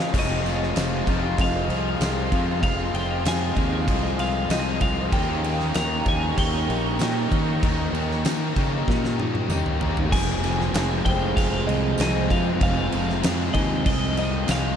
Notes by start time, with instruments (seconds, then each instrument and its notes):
Already playing: overdriven electric guitar C#3 G#3 F4 G#4, ambient pad G#4 D#5 F5 C#6, clean electric guitar F5
0.00 overdriven electric guitar C#4, snare
0.13 fingered electric bass F1, overdriven electric guitar F2 C3 F3 G#3 C4 F4, ambient pad G#4, kick, crash
0.17 ambient pad D#5 F5 C6, clean electric guitar D#5
0.44 overdriven electric guitar F2 C3 F3 G#3 C4 F4, snare, crash
0.63 snare
0.74 fingered electric bass F1, overdriven electric guitar F2 C3 F3 G#3 C4 F4, snare, tambourine, crash
1.05 fingered electric bass F1, overdriven electric guitar F2 C3 F3 G#3 C4 F4, kick, crash
1.38 fingered electric bass F1, overdriven electric guitar F2 C3 F3, clean electric guitar F5, kick, crash
1.69 fingered electric bass C2, overdriven electric guitar F2 C3 F3, crash
2.00 fingered electric bass C2, overdriven electric guitar F2 C3 F3 G#3 C4 F4, snare, tambourine, crash
2.30 fingered electric bass F2, overdriven electric guitar F2 C3 F3 G#3 C4 F4, kick, crash
2.61 fingered electric bass F1, overdriven electric guitar F2 C3 F3 G#3 C4, clean electric guitar F5, kick, crash
2.65 overdriven electric guitar F4
2.93 fingered electric bass F1, overdriven electric guitar F2 C3 F3 G#3 C4 F4, clean electric guitar G5, crash
3.25 fingered electric bass F2, overdriven electric guitar F2 C3 F3 G#3 C4 F4, clean electric guitar G#5, snare, tambourine, crash
3.55 fingered electric bass D#2, overdriven electric guitar F2 C3 F3 G#3 C4 F4, kick, crash
3.60 overdriven electric guitar F3
3.87 fingered electric bass C2, overdriven electric guitar F2 C3 F3, kick, crash
4.19 overdriven electric guitar F2 C3 F3, clean electric guitar F5, crash
4.49 fingered electric bass C2, overdriven electric guitar F2 C3 F3 G#3 C4 F4, clean electric guitar D#5, snare, tambourine, crash
4.80 overdriven electric guitar F2 C3 F3 G#3 C4 F4, clean electric guitar F5, kick, crash
5.11 fingered electric bass D#2, overdriven electric guitar D#3 A#3 C#4 D#4, ambient pad A#4 A#5 C#6, clean electric guitar G5, kick, crash
5.15 overdriven electric guitar G4
5.43 overdriven electric guitar D#3 A#3 C#4 D#4 G4, crash
5.60 snare
5.74 fingered electric bass D#2, overdriven electric guitar D#3 A#3 C#4 D#4 G4, clean electric guitar A#5, snare, tambourine, crash
6.05 fingered electric bass D#2, overdriven electric guitar D#3 A#3 C#4 D#4 G4, clean electric guitar G#5, kick, crash
6.37 fingered electric bass D#2, overdriven electric guitar D#3 A#3 D#4, clean electric guitar G5, kick, crash
6.69 fingered electric bass A#1, overdriven electric guitar D#3 A#3 D#4, crash
6.98 fingered electric bass A#2, overdriven electric guitar D#3 A#3 C#4 D#4, snare, tambourine, crash
7.03 overdriven electric guitar G4
7.30 overdriven electric guitar D#3 A#3 C#4 D#4 G4, fingered electric bass D#3, kick, crash
7.61 fingered electric bass D#2, overdriven electric guitar D#3 A#3 C#4 D#4 G4, kick, crash
7.92 fingered electric bass D#2, overdriven electric guitar D#3 A#3 C#4 D#4 G4, crash
7.97 overdriven electric guitar A#3
8.11 snare
8.24 overdriven electric guitar D#3 A#3 C#4 D#4 G4, fingered electric bass D#3, snare, tambourine, crash
8.55 fingered electric bass C#3, overdriven electric guitar D#3 A#3 C#4 D#4 G4, kick, crash
8.87 fingered electric bass A#2, overdriven electric guitar D#3 A#3 D#4, kick, snare
9.04 snare
9.18 overdriven electric guitar D#3 A#3 D#4, high tom
9.35 high tom
9.49 fingered electric bass D#2, overdriven electric guitar D#3 A#3 C#4 D#4 G4, mid tom, tambourine
9.66 mid tom
9.79 overdriven electric guitar D#3 A#3 C#4 D#4 G4, floor tom
9.97 floor tom
10.11 fingered electric bass F1, overdriven electric guitar F2 C3 F3, clean electric guitar G#5, kick, crash
10.15 overdriven electric guitar G#3 C4 G#4
10.42 overdriven electric guitar F2 C3 F3 C4 G#4, snare, crash
10.46 overdriven electric guitar F3 G#3
10.61 snare
10.73 fingered electric bass F1, overdriven electric guitar F2 C3 F3 G#3 C4, snare, tambourine, crash
10.78 overdriven electric guitar G#4
11.05 fingered electric bass F1, overdriven electric guitar F2 C3 F3 G#3 C4 G#4, clean electric guitar G5, kick, crash
11.37 fingered electric bass F1, overdriven electric guitar F2 C3 F3, clean electric guitar F5, kick, crash
11.67 fingered electric bass C2, overdriven electric guitar F2 C3 F3, clean electric guitar D#5, crash
11.98 fingered electric bass C2, overdriven electric guitar F2 C3 F3 G#3 C4 G#4, clean electric guitar D#5, snare, tambourine, crash
12.29 fingered electric bass F2, overdriven electric guitar F2 C3 F3 G#3 C4 G#4, clean electric guitar F5, kick, crash
12.60 fingered electric bass F1, overdriven electric guitar F2 C3 F3 G#3 C4 G#4, clean electric guitar F5, kick, crash
12.92 fingered electric bass F1, overdriven electric guitar F2 C3 F3 G#3 C4 G#4, crash
13.10 snare
13.22 fingered electric bass F2, overdriven electric guitar F2 F3 G#3 C4 G#4, snare, tambourine, crash
13.26 overdriven electric guitar C3 F3
13.54 fingered electric bass D#2, overdriven electric guitar F2 C3 F3 G#3 C4 G#4, clean electric guitar D#5, kick, crash
13.86 fingered electric bass C2, overdriven electric guitar F2 C3 F3, clean electric guitar D#5, kick, crash
14.17 overdriven electric guitar F2 C3 F3, clean electric guitar D#5, crash
14.46 fingered electric bass C2, overdriven electric guitar F2 F3 G#3 C4 G#4, snare, tambourine, crash
14.50 overdriven electric guitar C3 F3, clean electric guitar F5